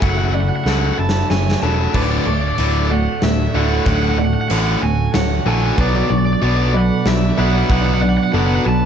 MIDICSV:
0, 0, Header, 1, 8, 480
1, 0, Start_track
1, 0, Key_signature, 2, "major"
1, 0, Tempo, 639659
1, 20, Time_signature, 3, 2, 24, 8
1, 6644, End_track
2, 0, Start_track
2, 0, Title_t, "Overdriven electric guitar"
2, 0, Program_c, 0, 29
2, 19, Note_on_c, 0, 78, 87
2, 70, Note_off_c, 0, 78, 0
2, 73, Note_on_c, 0, 78, 60
2, 130, Note_off_c, 0, 78, 0
2, 133, Note_on_c, 0, 78, 75
2, 185, Note_off_c, 0, 78, 0
2, 188, Note_on_c, 0, 78, 68
2, 239, Note_off_c, 0, 78, 0
2, 242, Note_on_c, 0, 78, 79
2, 299, Note_off_c, 0, 78, 0
2, 304, Note_on_c, 0, 78, 71
2, 361, Note_off_c, 0, 78, 0
2, 365, Note_on_c, 0, 78, 76
2, 415, Note_off_c, 0, 78, 0
2, 418, Note_on_c, 0, 78, 70
2, 475, Note_off_c, 0, 78, 0
2, 480, Note_on_c, 0, 78, 77
2, 529, Note_off_c, 0, 78, 0
2, 532, Note_on_c, 0, 78, 66
2, 589, Note_off_c, 0, 78, 0
2, 594, Note_on_c, 0, 78, 74
2, 648, Note_off_c, 0, 78, 0
2, 651, Note_on_c, 0, 78, 66
2, 704, Note_off_c, 0, 78, 0
2, 707, Note_on_c, 0, 78, 72
2, 742, Note_off_c, 0, 78, 0
2, 745, Note_on_c, 0, 81, 93
2, 967, Note_off_c, 0, 81, 0
2, 980, Note_on_c, 0, 80, 90
2, 1218, Note_off_c, 0, 80, 0
2, 1221, Note_on_c, 0, 81, 92
2, 1462, Note_on_c, 0, 74, 77
2, 1469, Note_off_c, 0, 81, 0
2, 1519, Note_off_c, 0, 74, 0
2, 1522, Note_on_c, 0, 74, 58
2, 1574, Note_off_c, 0, 74, 0
2, 1577, Note_on_c, 0, 74, 75
2, 1633, Note_off_c, 0, 74, 0
2, 1636, Note_on_c, 0, 74, 65
2, 1693, Note_off_c, 0, 74, 0
2, 1697, Note_on_c, 0, 74, 72
2, 1750, Note_off_c, 0, 74, 0
2, 1753, Note_on_c, 0, 74, 64
2, 1806, Note_off_c, 0, 74, 0
2, 1809, Note_on_c, 0, 74, 76
2, 1858, Note_off_c, 0, 74, 0
2, 1861, Note_on_c, 0, 74, 70
2, 1914, Note_off_c, 0, 74, 0
2, 1917, Note_on_c, 0, 74, 75
2, 1974, Note_off_c, 0, 74, 0
2, 1981, Note_on_c, 0, 74, 61
2, 2032, Note_off_c, 0, 74, 0
2, 2035, Note_on_c, 0, 74, 72
2, 2092, Note_off_c, 0, 74, 0
2, 2096, Note_on_c, 0, 74, 60
2, 2149, Note_off_c, 0, 74, 0
2, 2152, Note_on_c, 0, 74, 66
2, 2185, Note_on_c, 0, 78, 86
2, 2209, Note_off_c, 0, 74, 0
2, 2428, Note_on_c, 0, 76, 78
2, 2431, Note_off_c, 0, 78, 0
2, 2665, Note_on_c, 0, 78, 89
2, 2672, Note_off_c, 0, 76, 0
2, 2887, Note_off_c, 0, 78, 0
2, 2907, Note_on_c, 0, 78, 88
2, 2962, Note_off_c, 0, 78, 0
2, 2965, Note_on_c, 0, 78, 63
2, 3017, Note_off_c, 0, 78, 0
2, 3020, Note_on_c, 0, 78, 69
2, 3067, Note_off_c, 0, 78, 0
2, 3070, Note_on_c, 0, 78, 67
2, 3128, Note_off_c, 0, 78, 0
2, 3139, Note_on_c, 0, 78, 82
2, 3185, Note_off_c, 0, 78, 0
2, 3188, Note_on_c, 0, 78, 71
2, 3246, Note_off_c, 0, 78, 0
2, 3252, Note_on_c, 0, 78, 81
2, 3306, Note_off_c, 0, 78, 0
2, 3309, Note_on_c, 0, 78, 65
2, 3361, Note_off_c, 0, 78, 0
2, 3364, Note_on_c, 0, 78, 80
2, 3422, Note_off_c, 0, 78, 0
2, 3428, Note_on_c, 0, 78, 68
2, 3476, Note_off_c, 0, 78, 0
2, 3479, Note_on_c, 0, 78, 71
2, 3534, Note_off_c, 0, 78, 0
2, 3537, Note_on_c, 0, 78, 62
2, 3594, Note_off_c, 0, 78, 0
2, 3625, Note_on_c, 0, 80, 100
2, 3847, Note_off_c, 0, 80, 0
2, 3861, Note_on_c, 0, 78, 92
2, 4104, Note_off_c, 0, 78, 0
2, 4107, Note_on_c, 0, 80, 91
2, 4351, Note_off_c, 0, 80, 0
2, 4356, Note_on_c, 0, 74, 88
2, 4413, Note_off_c, 0, 74, 0
2, 4417, Note_on_c, 0, 74, 64
2, 4466, Note_off_c, 0, 74, 0
2, 4469, Note_on_c, 0, 74, 71
2, 4526, Note_off_c, 0, 74, 0
2, 4530, Note_on_c, 0, 74, 64
2, 4574, Note_off_c, 0, 74, 0
2, 4577, Note_on_c, 0, 74, 81
2, 4633, Note_off_c, 0, 74, 0
2, 4636, Note_on_c, 0, 74, 66
2, 4691, Note_off_c, 0, 74, 0
2, 4694, Note_on_c, 0, 74, 80
2, 4747, Note_off_c, 0, 74, 0
2, 4750, Note_on_c, 0, 74, 68
2, 4806, Note_off_c, 0, 74, 0
2, 4813, Note_on_c, 0, 74, 75
2, 4863, Note_off_c, 0, 74, 0
2, 4866, Note_on_c, 0, 74, 66
2, 4918, Note_off_c, 0, 74, 0
2, 4921, Note_on_c, 0, 74, 79
2, 4970, Note_off_c, 0, 74, 0
2, 4973, Note_on_c, 0, 74, 67
2, 5029, Note_off_c, 0, 74, 0
2, 5043, Note_on_c, 0, 74, 69
2, 5078, Note_on_c, 0, 78, 87
2, 5099, Note_off_c, 0, 74, 0
2, 5310, Note_on_c, 0, 76, 84
2, 5316, Note_off_c, 0, 78, 0
2, 5529, Note_off_c, 0, 76, 0
2, 5548, Note_on_c, 0, 78, 86
2, 5774, Note_off_c, 0, 78, 0
2, 5783, Note_on_c, 0, 78, 91
2, 5833, Note_off_c, 0, 78, 0
2, 5836, Note_on_c, 0, 78, 65
2, 5893, Note_off_c, 0, 78, 0
2, 5897, Note_on_c, 0, 78, 78
2, 5952, Note_off_c, 0, 78, 0
2, 5955, Note_on_c, 0, 78, 68
2, 6009, Note_off_c, 0, 78, 0
2, 6012, Note_on_c, 0, 78, 85
2, 6068, Note_off_c, 0, 78, 0
2, 6071, Note_on_c, 0, 78, 74
2, 6128, Note_off_c, 0, 78, 0
2, 6131, Note_on_c, 0, 78, 89
2, 6177, Note_off_c, 0, 78, 0
2, 6180, Note_on_c, 0, 78, 75
2, 6237, Note_off_c, 0, 78, 0
2, 6245, Note_on_c, 0, 78, 76
2, 6297, Note_off_c, 0, 78, 0
2, 6300, Note_on_c, 0, 78, 66
2, 6348, Note_off_c, 0, 78, 0
2, 6351, Note_on_c, 0, 78, 75
2, 6408, Note_off_c, 0, 78, 0
2, 6416, Note_on_c, 0, 78, 64
2, 6473, Note_off_c, 0, 78, 0
2, 6511, Note_on_c, 0, 81, 97
2, 6644, Note_off_c, 0, 81, 0
2, 6644, End_track
3, 0, Start_track
3, 0, Title_t, "Felt piano"
3, 0, Program_c, 1, 0
3, 0, Note_on_c, 1, 76, 71
3, 256, Note_off_c, 1, 76, 0
3, 256, Note_on_c, 1, 74, 82
3, 498, Note_on_c, 1, 69, 76
3, 499, Note_off_c, 1, 74, 0
3, 978, Note_on_c, 1, 73, 74
3, 980, Note_off_c, 1, 69, 0
3, 1218, Note_on_c, 1, 69, 66
3, 1220, Note_off_c, 1, 73, 0
3, 1459, Note_on_c, 1, 71, 84
3, 1460, Note_off_c, 1, 69, 0
3, 1693, Note_on_c, 1, 85, 74
3, 1701, Note_off_c, 1, 71, 0
3, 2177, Note_on_c, 1, 74, 62
3, 2178, Note_off_c, 1, 85, 0
3, 2660, Note_off_c, 1, 74, 0
3, 2660, Note_on_c, 1, 76, 66
3, 3138, Note_on_c, 1, 74, 72
3, 3142, Note_off_c, 1, 76, 0
3, 3380, Note_off_c, 1, 74, 0
3, 3380, Note_on_c, 1, 69, 85
3, 3857, Note_on_c, 1, 73, 81
3, 3861, Note_off_c, 1, 69, 0
3, 4100, Note_off_c, 1, 73, 0
3, 4100, Note_on_c, 1, 69, 79
3, 4336, Note_on_c, 1, 71, 90
3, 4341, Note_off_c, 1, 69, 0
3, 4578, Note_on_c, 1, 85, 82
3, 4579, Note_off_c, 1, 71, 0
3, 5059, Note_off_c, 1, 85, 0
3, 5059, Note_on_c, 1, 74, 75
3, 5535, Note_on_c, 1, 76, 80
3, 5540, Note_off_c, 1, 74, 0
3, 6013, Note_on_c, 1, 74, 81
3, 6017, Note_off_c, 1, 76, 0
3, 6252, Note_on_c, 1, 69, 88
3, 6256, Note_off_c, 1, 74, 0
3, 6644, Note_off_c, 1, 69, 0
3, 6644, End_track
4, 0, Start_track
4, 0, Title_t, "String section"
4, 0, Program_c, 2, 48
4, 0, Note_on_c, 2, 54, 66
4, 0, Note_on_c, 2, 66, 53
4, 0, Note_on_c, 2, 69, 60
4, 0, Note_on_c, 2, 76, 69
4, 1428, Note_off_c, 2, 76, 0
4, 1429, Note_off_c, 2, 69, 0
4, 1431, Note_off_c, 2, 54, 0
4, 1463, Note_on_c, 2, 69, 77
4, 1464, Note_on_c, 2, 50, 67
4, 4314, Note_off_c, 2, 50, 0
4, 4314, Note_off_c, 2, 66, 0
4, 4314, Note_off_c, 2, 69, 0
4, 4337, Note_on_c, 2, 69, 65
4, 4340, Note_on_c, 2, 59, 73
4, 4341, Note_on_c, 2, 74, 88
4, 4342, Note_on_c, 2, 66, 74
4, 5763, Note_off_c, 2, 69, 0
4, 5775, Note_on_c, 2, 71, 65
4, 6644, Note_off_c, 2, 59, 0
4, 6644, Note_off_c, 2, 66, 0
4, 6644, Note_off_c, 2, 71, 0
4, 6644, Note_off_c, 2, 74, 0
4, 6644, End_track
5, 0, Start_track
5, 0, Title_t, "Clean electric guitar"
5, 0, Program_c, 3, 27
5, 0, Note_on_c, 3, 57, 73
5, 0, Note_on_c, 3, 64, 65
5, 25, Note_on_c, 3, 42, 66
5, 258, Note_off_c, 3, 57, 0
5, 261, Note_on_c, 3, 57, 60
5, 504, Note_on_c, 3, 61, 62
5, 735, Note_off_c, 3, 64, 0
5, 744, Note_on_c, 3, 64, 63
5, 981, Note_off_c, 3, 57, 0
5, 984, Note_on_c, 3, 57, 65
5, 1214, Note_off_c, 3, 64, 0
5, 1223, Note_on_c, 3, 64, 59
5, 1224, Note_off_c, 3, 42, 0
5, 1460, Note_on_c, 3, 38, 68
5, 1462, Note_off_c, 3, 64, 0
5, 1482, Note_off_c, 3, 61, 0
5, 1694, Note_off_c, 3, 57, 0
5, 1697, Note_on_c, 3, 57, 63
5, 2181, Note_on_c, 3, 66, 76
5, 2417, Note_off_c, 3, 57, 0
5, 2420, Note_on_c, 3, 57, 62
5, 2659, Note_off_c, 3, 66, 0
5, 2662, Note_off_c, 3, 38, 0
5, 2662, Note_on_c, 3, 66, 68
5, 2899, Note_on_c, 3, 38, 73
5, 3138, Note_off_c, 3, 57, 0
5, 3141, Note_on_c, 3, 57, 64
5, 3381, Note_on_c, 3, 61, 66
5, 3617, Note_off_c, 3, 66, 0
5, 3620, Note_on_c, 3, 66, 73
5, 3856, Note_off_c, 3, 57, 0
5, 3859, Note_on_c, 3, 57, 68
5, 4100, Note_off_c, 3, 38, 0
5, 4101, Note_off_c, 3, 66, 0
5, 4104, Note_on_c, 3, 66, 69
5, 4341, Note_off_c, 3, 61, 0
5, 4341, Note_on_c, 3, 47, 73
5, 4364, Note_off_c, 3, 57, 0
5, 4581, Note_on_c, 3, 62, 64
5, 4820, Note_off_c, 3, 66, 0
5, 4820, Note_on_c, 3, 66, 67
5, 5057, Note_on_c, 3, 71, 81
5, 5294, Note_off_c, 3, 62, 0
5, 5297, Note_on_c, 3, 62, 69
5, 5526, Note_off_c, 3, 71, 0
5, 5535, Note_on_c, 3, 71, 73
5, 5540, Note_off_c, 3, 47, 0
5, 5774, Note_on_c, 3, 47, 78
5, 6007, Note_off_c, 3, 62, 0
5, 6016, Note_on_c, 3, 62, 65
5, 6019, Note_off_c, 3, 66, 0
5, 6257, Note_on_c, 3, 66, 64
5, 6484, Note_off_c, 3, 71, 0
5, 6493, Note_on_c, 3, 71, 74
5, 6644, Note_off_c, 3, 47, 0
5, 6644, Note_off_c, 3, 62, 0
5, 6644, Note_off_c, 3, 66, 0
5, 6644, Note_off_c, 3, 71, 0
5, 6644, End_track
6, 0, Start_track
6, 0, Title_t, "Distorted electric guitar"
6, 0, Program_c, 4, 30
6, 17, Note_on_c, 4, 42, 80
6, 20, Note_on_c, 4, 49, 80
6, 23, Note_on_c, 4, 54, 91
6, 244, Note_off_c, 4, 42, 0
6, 246, Note_off_c, 4, 49, 0
6, 248, Note_off_c, 4, 54, 0
6, 255, Note_on_c, 4, 42, 60
6, 258, Note_on_c, 4, 49, 61
6, 474, Note_off_c, 4, 42, 0
6, 476, Note_off_c, 4, 49, 0
6, 501, Note_on_c, 4, 42, 87
6, 504, Note_on_c, 4, 49, 104
6, 507, Note_on_c, 4, 54, 101
6, 727, Note_off_c, 4, 42, 0
6, 728, Note_off_c, 4, 49, 0
6, 730, Note_off_c, 4, 54, 0
6, 737, Note_on_c, 4, 42, 63
6, 739, Note_on_c, 4, 49, 76
6, 955, Note_off_c, 4, 42, 0
6, 956, Note_off_c, 4, 49, 0
6, 981, Note_on_c, 4, 42, 61
6, 983, Note_on_c, 4, 49, 75
6, 1197, Note_off_c, 4, 42, 0
6, 1199, Note_off_c, 4, 49, 0
6, 1220, Note_on_c, 4, 42, 80
6, 1224, Note_on_c, 4, 49, 82
6, 1226, Note_on_c, 4, 54, 85
6, 1447, Note_off_c, 4, 42, 0
6, 1448, Note_off_c, 4, 49, 0
6, 1450, Note_off_c, 4, 54, 0
6, 1459, Note_on_c, 4, 38, 73
6, 1459, Note_on_c, 4, 45, 83
6, 1464, Note_on_c, 4, 50, 81
6, 1686, Note_off_c, 4, 38, 0
6, 1686, Note_off_c, 4, 45, 0
6, 1689, Note_off_c, 4, 50, 0
6, 1701, Note_on_c, 4, 38, 59
6, 1704, Note_on_c, 4, 45, 64
6, 1918, Note_off_c, 4, 38, 0
6, 1919, Note_off_c, 4, 45, 0
6, 1940, Note_on_c, 4, 38, 89
6, 1945, Note_on_c, 4, 45, 89
6, 1948, Note_on_c, 4, 50, 95
6, 2167, Note_off_c, 4, 38, 0
6, 2169, Note_off_c, 4, 45, 0
6, 2171, Note_off_c, 4, 50, 0
6, 2185, Note_on_c, 4, 38, 67
6, 2189, Note_on_c, 4, 45, 75
6, 2400, Note_off_c, 4, 38, 0
6, 2402, Note_off_c, 4, 45, 0
6, 2425, Note_on_c, 4, 38, 62
6, 2429, Note_on_c, 4, 45, 76
6, 2640, Note_off_c, 4, 38, 0
6, 2642, Note_off_c, 4, 45, 0
6, 2659, Note_on_c, 4, 38, 84
6, 2664, Note_on_c, 4, 45, 84
6, 2665, Note_on_c, 4, 50, 107
6, 2886, Note_off_c, 4, 38, 0
6, 2889, Note_off_c, 4, 45, 0
6, 2889, Note_off_c, 4, 50, 0
6, 2898, Note_on_c, 4, 38, 79
6, 2902, Note_on_c, 4, 45, 89
6, 2903, Note_on_c, 4, 50, 91
6, 3126, Note_off_c, 4, 38, 0
6, 3128, Note_off_c, 4, 45, 0
6, 3129, Note_off_c, 4, 50, 0
6, 3138, Note_on_c, 4, 38, 69
6, 3141, Note_on_c, 4, 45, 67
6, 3357, Note_off_c, 4, 38, 0
6, 3358, Note_off_c, 4, 45, 0
6, 3376, Note_on_c, 4, 38, 92
6, 3381, Note_on_c, 4, 45, 94
6, 3382, Note_on_c, 4, 50, 107
6, 3605, Note_off_c, 4, 38, 0
6, 3607, Note_off_c, 4, 45, 0
6, 3608, Note_off_c, 4, 50, 0
6, 3618, Note_on_c, 4, 38, 71
6, 3621, Note_on_c, 4, 45, 63
6, 3836, Note_off_c, 4, 38, 0
6, 3838, Note_off_c, 4, 45, 0
6, 3855, Note_on_c, 4, 38, 73
6, 3857, Note_on_c, 4, 45, 70
6, 4075, Note_off_c, 4, 38, 0
6, 4076, Note_off_c, 4, 45, 0
6, 4094, Note_on_c, 4, 38, 85
6, 4095, Note_on_c, 4, 45, 92
6, 4098, Note_on_c, 4, 50, 102
6, 4324, Note_off_c, 4, 38, 0
6, 4324, Note_off_c, 4, 45, 0
6, 4326, Note_off_c, 4, 50, 0
6, 4331, Note_on_c, 4, 47, 87
6, 4335, Note_on_c, 4, 54, 93
6, 4336, Note_on_c, 4, 59, 83
6, 4562, Note_off_c, 4, 47, 0
6, 4564, Note_off_c, 4, 54, 0
6, 4564, Note_off_c, 4, 59, 0
6, 4573, Note_on_c, 4, 47, 77
6, 4577, Note_on_c, 4, 54, 72
6, 4793, Note_off_c, 4, 47, 0
6, 4795, Note_off_c, 4, 54, 0
6, 4816, Note_on_c, 4, 47, 109
6, 4820, Note_on_c, 4, 54, 102
6, 4823, Note_on_c, 4, 59, 99
6, 5044, Note_off_c, 4, 47, 0
6, 5046, Note_off_c, 4, 54, 0
6, 5048, Note_off_c, 4, 59, 0
6, 5055, Note_on_c, 4, 47, 66
6, 5058, Note_on_c, 4, 54, 81
6, 5274, Note_off_c, 4, 47, 0
6, 5275, Note_off_c, 4, 54, 0
6, 5300, Note_on_c, 4, 47, 68
6, 5302, Note_on_c, 4, 54, 84
6, 5516, Note_off_c, 4, 47, 0
6, 5517, Note_off_c, 4, 54, 0
6, 5534, Note_on_c, 4, 47, 85
6, 5536, Note_on_c, 4, 54, 91
6, 5541, Note_on_c, 4, 59, 94
6, 5763, Note_off_c, 4, 47, 0
6, 5763, Note_off_c, 4, 54, 0
6, 5766, Note_off_c, 4, 59, 0
6, 5774, Note_on_c, 4, 47, 94
6, 5780, Note_on_c, 4, 54, 95
6, 5782, Note_on_c, 4, 59, 97
6, 6002, Note_off_c, 4, 47, 0
6, 6005, Note_off_c, 4, 54, 0
6, 6006, Note_off_c, 4, 59, 0
6, 6020, Note_on_c, 4, 47, 65
6, 6021, Note_on_c, 4, 54, 83
6, 6235, Note_off_c, 4, 47, 0
6, 6236, Note_off_c, 4, 54, 0
6, 6258, Note_on_c, 4, 47, 99
6, 6259, Note_on_c, 4, 54, 105
6, 6262, Note_on_c, 4, 59, 106
6, 6484, Note_off_c, 4, 47, 0
6, 6484, Note_off_c, 4, 54, 0
6, 6485, Note_off_c, 4, 59, 0
6, 6495, Note_on_c, 4, 47, 82
6, 6501, Note_on_c, 4, 54, 90
6, 6644, Note_off_c, 4, 47, 0
6, 6644, Note_off_c, 4, 54, 0
6, 6644, End_track
7, 0, Start_track
7, 0, Title_t, "Picked electric bass"
7, 0, Program_c, 5, 34
7, 17, Note_on_c, 5, 30, 94
7, 372, Note_off_c, 5, 30, 0
7, 493, Note_on_c, 5, 37, 85
7, 673, Note_off_c, 5, 37, 0
7, 742, Note_on_c, 5, 30, 74
7, 919, Note_off_c, 5, 30, 0
7, 980, Note_on_c, 5, 30, 96
7, 1158, Note_off_c, 5, 30, 0
7, 1221, Note_on_c, 5, 28, 82
7, 1399, Note_off_c, 5, 28, 0
7, 1460, Note_on_c, 5, 26, 99
7, 1638, Note_off_c, 5, 26, 0
7, 1702, Note_on_c, 5, 26, 89
7, 1879, Note_off_c, 5, 26, 0
7, 1941, Note_on_c, 5, 26, 93
7, 2296, Note_off_c, 5, 26, 0
7, 2422, Note_on_c, 5, 26, 94
7, 2599, Note_off_c, 5, 26, 0
7, 2660, Note_on_c, 5, 26, 86
7, 2838, Note_off_c, 5, 26, 0
7, 2902, Note_on_c, 5, 26, 108
7, 3256, Note_off_c, 5, 26, 0
7, 3385, Note_on_c, 5, 33, 101
7, 3561, Note_off_c, 5, 33, 0
7, 3624, Note_on_c, 5, 26, 86
7, 3800, Note_off_c, 5, 26, 0
7, 3862, Note_on_c, 5, 26, 89
7, 4039, Note_off_c, 5, 26, 0
7, 4099, Note_on_c, 5, 34, 91
7, 4277, Note_off_c, 5, 34, 0
7, 4339, Note_on_c, 5, 35, 100
7, 4517, Note_off_c, 5, 35, 0
7, 4581, Note_on_c, 5, 35, 96
7, 4758, Note_off_c, 5, 35, 0
7, 4820, Note_on_c, 5, 35, 103
7, 5174, Note_off_c, 5, 35, 0
7, 5297, Note_on_c, 5, 35, 95
7, 5475, Note_off_c, 5, 35, 0
7, 5541, Note_on_c, 5, 35, 90
7, 5718, Note_off_c, 5, 35, 0
7, 5779, Note_on_c, 5, 35, 105
7, 6132, Note_off_c, 5, 35, 0
7, 6259, Note_on_c, 5, 30, 103
7, 6435, Note_off_c, 5, 30, 0
7, 6501, Note_on_c, 5, 35, 94
7, 6644, Note_off_c, 5, 35, 0
7, 6644, End_track
8, 0, Start_track
8, 0, Title_t, "Drums"
8, 14, Note_on_c, 9, 42, 73
8, 16, Note_on_c, 9, 36, 113
8, 89, Note_off_c, 9, 42, 0
8, 91, Note_off_c, 9, 36, 0
8, 497, Note_on_c, 9, 38, 58
8, 572, Note_off_c, 9, 38, 0
8, 819, Note_on_c, 9, 38, 82
8, 894, Note_off_c, 9, 38, 0
8, 977, Note_on_c, 9, 38, 65
8, 1052, Note_off_c, 9, 38, 0
8, 1137, Note_on_c, 9, 38, 85
8, 1212, Note_off_c, 9, 38, 0
8, 1459, Note_on_c, 9, 36, 97
8, 1459, Note_on_c, 9, 49, 88
8, 1534, Note_off_c, 9, 36, 0
8, 1534, Note_off_c, 9, 49, 0
8, 1936, Note_on_c, 9, 42, 74
8, 2011, Note_off_c, 9, 42, 0
8, 2416, Note_on_c, 9, 38, 83
8, 2416, Note_on_c, 9, 42, 63
8, 2491, Note_off_c, 9, 38, 0
8, 2491, Note_off_c, 9, 42, 0
8, 2897, Note_on_c, 9, 42, 75
8, 2899, Note_on_c, 9, 36, 106
8, 2972, Note_off_c, 9, 42, 0
8, 2974, Note_off_c, 9, 36, 0
8, 3376, Note_on_c, 9, 42, 81
8, 3451, Note_off_c, 9, 42, 0
8, 3856, Note_on_c, 9, 38, 81
8, 3856, Note_on_c, 9, 42, 70
8, 3931, Note_off_c, 9, 38, 0
8, 3931, Note_off_c, 9, 42, 0
8, 4338, Note_on_c, 9, 36, 111
8, 4413, Note_off_c, 9, 36, 0
8, 5295, Note_on_c, 9, 38, 83
8, 5370, Note_off_c, 9, 38, 0
8, 5775, Note_on_c, 9, 36, 104
8, 5850, Note_off_c, 9, 36, 0
8, 6644, End_track
0, 0, End_of_file